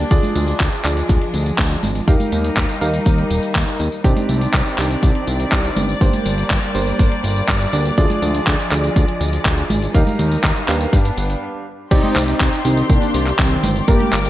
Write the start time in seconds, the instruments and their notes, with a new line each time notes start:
Already playing: string section D4
0.11 analog synth bass D2, string section F3 G#3, electric grand piano D4 F4 G#4 D5, kick, closed hi-hat, tambourine
0.23 closed hi-hat, tambourine, high conga
0.35 analog synth bass D2, closed hi-hat, tambourine, high conga
0.48 closed hi-hat, tambourine
0.60 analog synth bass D2, kick, clap, closed hi-hat, tambourine
0.72 closed hi-hat, tambourine
0.85 analog synth bass D2, electric grand piano D4 F4 G#4 D5, clap, closed hi-hat, tambourine
0.97 closed hi-hat, tambourine
1.09 analog synth bass D2, kick, closed hi-hat, tambourine
1.21 closed hi-hat
1.34 analog synth bass D2, closed hi-hat, tambourine
1.46 closed hi-hat, tambourine
1.58 analog synth bass D2, kick, clap, closed hi-hat, tambourine
1.71 closed hi-hat, tambourine
1.83 analog synth bass G#1, closed hi-hat, tambourine, high conga
1.95 closed hi-hat, tambourine
2.08 analog synth bass D#2, string section G3 A#3 D#4, electric grand piano D#4 G4 A#4 F5, kick, closed hi-hat, tambourine
2.20 closed hi-hat, tambourine, high conga
2.32 analog synth bass D#2, closed hi-hat, tambourine, high conga
2.44 closed hi-hat, tambourine
2.57 analog synth bass D#2, kick, clap, closed hi-hat, tambourine
2.69 closed hi-hat, tambourine
2.81 analog synth bass D#2, electric grand piano D#4 G4 A#4 F5, closed hi-hat, tambourine
2.94 closed hi-hat, tambourine
3.06 analog synth bass D#2, kick, closed hi-hat, tambourine
3.18 closed hi-hat
3.31 analog synth bass D#1, closed hi-hat, tambourine
3.43 closed hi-hat, tambourine
3.55 analog synth bass D#2, kick, clap, closed hi-hat, tambourine
3.67 closed hi-hat, tambourine
3.80 analog synth bass D#2, closed hi-hat, tambourine
3.92 closed hi-hat, tambourine
4.04 analog synth bass C2, string section D#3 C4 D5, electric grand piano C4 D4 D#4 G4, kick, closed hi-hat, tambourine
4.17 closed hi-hat, tambourine, high conga
4.29 analog synth bass C2, closed hi-hat, tambourine, high conga
4.41 closed hi-hat, tambourine
4.54 analog synth bass C2, kick, clap, closed hi-hat, tambourine
4.66 closed hi-hat, tambourine
4.78 analog synth bass C2, electric grand piano C4 D4 D#4 G4, clap, closed hi-hat, tambourine
4.90 closed hi-hat, tambourine
5.03 analog synth bass C2, kick, closed hi-hat, tambourine
5.15 closed hi-hat
5.27 analog synth bass C2, closed hi-hat, tambourine
5.40 closed hi-hat, tambourine
5.52 analog synth bass C2, kick, clap, closed hi-hat, tambourine
5.64 closed hi-hat, tambourine
5.76 analog synth bass G1, closed hi-hat, tambourine, high conga
5.89 closed hi-hat, tambourine
6.01 analog synth bass G1, string section G3 A#3, electric grand piano A#3 D4 G4 C5, kick, closed hi-hat, tambourine
6.13 closed hi-hat, tambourine, high conga
6.26 analog synth bass G1, closed hi-hat, tambourine
6.38 closed hi-hat, tambourine
6.50 analog synth bass G1, kick, clap, closed hi-hat, tambourine
6.63 closed hi-hat, tambourine
6.75 analog synth bass G1, electric grand piano A#3 D4 G4 C5, closed hi-hat, tambourine
6.87 closed hi-hat, tambourine
6.99 analog synth bass G1, kick, closed hi-hat, tambourine
7.12 closed hi-hat
7.24 analog synth bass G1, closed hi-hat, tambourine
7.36 closed hi-hat, tambourine
7.49 analog synth bass G1, kick, clap, closed hi-hat, tambourine
7.61 closed hi-hat, tambourine
7.73 analog synth bass D2, electric grand piano A#3 D4 G4 D5, closed hi-hat, tambourine
7.85 closed hi-hat, tambourine
7.98 analog synth bass D2, string section F3 G#3, electric grand piano D4 F4 G#4 D5, kick, closed hi-hat, tambourine
8.10 closed hi-hat, tambourine, high conga
8.22 analog synth bass D2, closed hi-hat, tambourine, high conga
8.35 closed hi-hat, tambourine
8.47 analog synth bass D2, kick, clap, closed hi-hat, tambourine
8.59 closed hi-hat, tambourine
8.71 analog synth bass D2, electric grand piano D4 F4 G#4 D5, clap, closed hi-hat, tambourine
8.84 closed hi-hat, tambourine
8.96 analog synth bass D2, kick, closed hi-hat, tambourine
9.08 closed hi-hat
9.21 analog synth bass D2, closed hi-hat, tambourine
9.33 closed hi-hat, tambourine
9.45 analog synth bass D2, kick, clap, closed hi-hat, tambourine
9.58 closed hi-hat, tambourine
9.70 analog synth bass G#1, closed hi-hat, tambourine, high conga
9.82 closed hi-hat, tambourine
9.94 analog synth bass D#2, string section G3 A#3 D#4, electric grand piano D#4 G4 A#4 F5, kick, closed hi-hat, tambourine
10.07 closed hi-hat, tambourine, high conga
10.19 analog synth bass D#2, closed hi-hat, tambourine, high conga
10.31 closed hi-hat, tambourine
10.44 analog synth bass D#2, kick, clap, closed hi-hat, tambourine
10.56 closed hi-hat, tambourine
10.68 analog synth bass D#2, electric grand piano D4 G4 B4 F5, clap, closed hi-hat, tambourine
10.81 closed hi-hat, tambourine
10.93 analog synth bass G2, string section B3 D4, kick, closed hi-hat, tambourine
11.05 closed hi-hat, tambourine
11.18 analog synth bass G1, closed hi-hat, tambourine
11.30 closed hi-hat, tambourine
11.91 analog synth bass C2, electric grand piano C4 D#4 G4 D5, analog polysynth C4 D#4, string section G4 D5 C6, kick, closed hi-hat, crash, tambourine
12.04 closed hi-hat, high conga
12.16 analog synth bass C2, clap, open hi-hat, tambourine, high conga
12.28 analog polysynth C4 D#4, closed hi-hat, tambourine
12.40 analog synth bass C2, kick, clap, closed hi-hat, tambourine
12.53 closed hi-hat, tambourine
12.65 analog synth bass C2, electric grand piano D#3 C4 D4 G4, analog polysynth C4 D#4, open hi-hat, tambourine
12.77 closed hi-hat, tambourine
12.89 analog synth bass C2, analog polysynth A#3 D4, kick, closed hi-hat, tambourine
13.02 closed hi-hat, tambourine
13.14 analog synth bass C2, open hi-hat, tambourine
13.27 clap, closed hi-hat, tambourine
13.39 analog synth bass C2, analog polysynth D#3 C4, kick, clap, closed hi-hat, tambourine
13.51 closed hi-hat
13.63 analog synth bass G1, open hi-hat, tambourine, high conga
13.76 closed hi-hat, tambourine
13.88 analog synth bass G1, electric grand piano G3 A#3 D4 A#4, analog polysynth A#3 G4, string section A#4 G5 D6, kick, closed hi-hat, tambourine
14.00 closed hi-hat, high conga
14.13 analog synth bass G1, clap, open hi-hat, tambourine
14.25 analog polysynth A#3 G4, closed hi-hat, tambourine